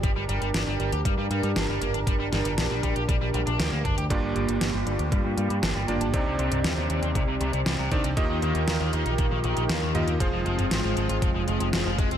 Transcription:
<<
  \new Staff \with { instrumentName = "Analog synth pad" } { \time 4/4 \key g \phrygian \tempo 4 = 118 << { bes'1~ | bes'1 | g'1~ | g'1 |
bes'1 | r1 | } \\ { <d' g'>1~ | <d' g'>1 | <bes f'>1 | <c c' d''>1 |
<ees f' g'>1 | <aes c'>1 | } >> }
  \new Staff \with { instrumentName = "Electric grand piano" } { \time 4/4 \key g \phrygian r1 | r1 | <g, bes d' f' g' d''>2.~ <g, bes d' f' g' d''>8 <bes d' f' g' d''>8 | <c c' d' ees' g' d''>2.~ <c c' d' ees' g' d''>8 <c' d' ees' g' d''>8 |
<ees bes ees' f' g' ees''>2.~ <ees bes ees' f' g' ees''>8 <bes ees' f' g' ees''>8 | <f f' aes' c''>2.~ <f f' aes' c''>8 r8 | }
  \new Staff \with { instrumentName = "Overdriven electric guitar" } { \clef bass \time 4/4 \key g \phrygian g16 g16 g16 g16 d'16 g16 g16 g'16 g16 g16 g16 g16 d'16 g16 bes16 d'16 | g16 g16 g16 g16 d'16 g16 g16 g'16 g16 g16 g16 d'16 g'16 bes16 d'16 g'16 | g16 g16 g16 g16 d'16 g16 g16 g'16 g16 g16 g16 g16 d'16 g16 bes16 d'16 | c16 c16 c16 c16 g16 c16 c16 c'16 c16 c16 c16 c16 g16 c16 ees16 g16 |
ees16 ees16 ees16 ees16 bes16 ees16 ees16 ees'16 ees16 ees16 ees16 ees16 bes16 ees16 g16 bes16 | f16 f16 f16 f16 c'16 f16 f16 f'16 f16 f16 f16 f16 c'16 f16 aes16 c'16 | }
  \new Staff \with { instrumentName = "Picked electric bass" } { \clef bass \time 4/4 \key g \phrygian g,,16 g,,16 g,,16 r16 g,,16 g,,16 g,,16 d,16 g,16 g,16 g,16 g,16 g,,16 g,,16 g,,16 g,,16 | g,,16 g,,16 g,,16 g,,16 bes,,16 bes,,16 bes,,16 bes,,16 bes,,16 bes,,16 bes,,16 bes,,16 d,16 d,16 d,16 d,16 | g,,16 g,,16 g,,16 g,,16 g,,16 g,,16 g,,16 d,16 g,16 g,16 g,16 g,16 g,,16 g,,16 g,,16 g,,16 | c,16 c,16 c,16 c,16 ees,16 ees,16 ees,16 ees,16 c,16 c,16 c,16 c,16 c,16 c,16 r16 c,16 |
ees,16 ees,16 ees,16 ees,16 ees,16 ees,16 ees,16 bes,,16 bes,,16 bes,,16 bes,,16 bes,,16 ees,16 ees,16 ees,16 ees,16 | f,,16 f,,16 f,,16 f,,16 aes,,16 aes,,16 aes,,16 aes,,16 f,,16 f,,16 f,,16 f,,16 f,,16 f,,16 f,,16 f,,16 | }
  \new DrumStaff \with { instrumentName = "Drums" } \drummode { \time 4/4 <hh bd>8 hh16 hh16 <hh sn>8 hh16 hh16 <hh bd>8 hh16 hh16 <hh sn>8 <hh toml>16 hh16 | <hh bd>8 <hh sn>16 <hh toml>16 <hh sn>8 <hh bd>16 hh16 <hh bd>8 hh16 hh16 <hh sn>8 <hh bd toml>16 hh16 | <hh bd>8 hh16 hh16 <hh sn>8 hh16 hh16 <hh bd>8 hh16 hh16 <hh sn>8 <hh toml>16 hh16 | <hh bd>8 hh16 <hh toml>16 <hh sn>8 hh16 hh16 <hh bd>8 hh16 hh16 <hh sn>8 <hh bd>16 hh16 |
<hh bd>8 hh16 hh16 <hh sn>8 hh16 hh16 <hh bd>8 hh16 hh16 <hh sn>8 <hh toml>16 hh16 | <hh bd>8 hh16 <hh toml>16 <hh sn>8 hh16 hh16 <hh bd>8 hh16 hh16 <hh sn>8 <hh bd>16 hh16 | }
>>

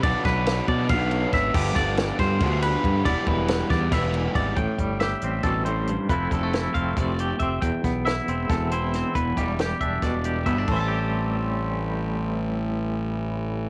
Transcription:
<<
  \new Staff \with { instrumentName = "Clean electric guitar" } { \time 7/8 \key a \minor \tempo 4 = 137 d''8 b'4 d''8 f''4 e''8 | g'8 d''4 c''4 b'4 | d''8 b'4 d''8 e''4 d''8 | g''4 e''4 a'8 c''4 |
b'8 a'4 f''8 d''4 e''8 | g''4 e''4 a'8 c''4 | b'8 g'4 e''8 d''4 e''8 | <a' c'' e'' a''>2.~ <a' c'' e'' a''>8~ |
<a' c'' e'' a''>2.~ <a' c'' e'' a''>8 | }
  \new Staff \with { instrumentName = "Clean electric guitar" } { \time 7/8 \key a \minor << { r2. r8 | r2. r8 | r2. r8 | r8 g8 g'8 c'2 |
<f a c' e'>8 g16 a16 e'8 c'4 g'8 c'8 | r8 b8 e'8 c'4 e'8 c'8 | r8 g8 g'8 d'4 g'8 b16 d'16 | <e g c' g'>2.~ <e g c' g'>8~ |
<e g c' g'>2.~ <e g c' g'>8 | } \\ { r2. r8 | r2. r8 | r2. r8 | a,2 b,8 a,8 g,8 |
f,2 c4. | e,2 e,4. | e,2 b,4. | a,2.~ a,8~ |
a,2.~ a,8 | } >> }
  \new Staff \with { instrumentName = "Overdriven electric guitar" } { \clef bass \time 7/8 \key a \minor <b, fis b d'>2 <b, fis b d'>4. | <g, d f b d'>2 <g, d f b d'>4. | <e g b e'>2 <e g b e'>4. | r2. r8 |
r2. r8 | r2. r8 | r2. r8 | r2. r8 |
r2. r8 | }
  \new Staff \with { instrumentName = "Fingered electric bass" } { \clef bass \time 7/8 \key a \minor b,,16 r16 b,,4 b,8 b,,4 gis,,8 | g,,8 g,,4 g,8 d,4 g,8 | e,,16 r16 e,,4 e,8 e,,4 gis,,8 | a,,16 r16 g,,4 a,,8 a,,4. |
f,,8 f,,4 f,,8 f,,4 f,,8 | e,,16 r16 b,,4 e,,8 e,,4. | e,,8 e,,4 e,,8 e,,4 g,,8 | a,,2.~ a,,8~ |
a,,2.~ a,,8 | }
  \new DrumStaff \with { instrumentName = "Drums" } \drummode { \time 7/8 <bd cymr>8 <bd cymr sn>8 <cymr sn>8 <bd cymr>8 <bd cymr>8 cymr8 <bd cymr sn>8 | <cymc bd>8 <bd cymr sn>8 <cymr sn>8 <bd cymr sn>8 <bd cymr>8 cymr8 <bd cymr>8 | <bd cymr>8 <bd cymr>8 <cymr sn>8 <bd cymr sn>8 <bd cymr sn>8 cymr8 <bd cymr>8 | <hh bd>8 <hh bd>8 <hh sn>8 hh8 <hh bd>8 hh8 hh8 |
<hh bd>8 <hh bd>8 <hh sn>8 <hh bd>8 <hh bd>8 hh8 <hh bd>8 | <hh bd>8 <hh bd sn>8 <hh sn>8 hh8 <hh bd sn>8 hh8 <hh sn>8 | <hh bd>8 <hh bd>8 <hh sn>8 <hh bd>8 <hh bd sn>8 hh8 <hh bd>8 | <cymc bd>4 r4 r4. |
r4 r4 r4. | }
>>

